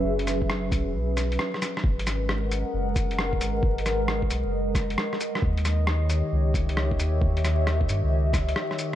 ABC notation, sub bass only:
X:1
M:4/4
L:1/16
Q:"Swing 16ths" 1/4=134
K:G#m
V:1 name="Sub bass" clef=bass
F,,,6 B,,, E,,, B,,,4 z4 | G,,,6- G,,, z F,,,6 G,,,2 | G,,,6 B,,, F,,,4- F,,, z4 | D,,6- D,, z C,,6 D,,2 |
D,,6 =G,, C,,4- C,, z4 |]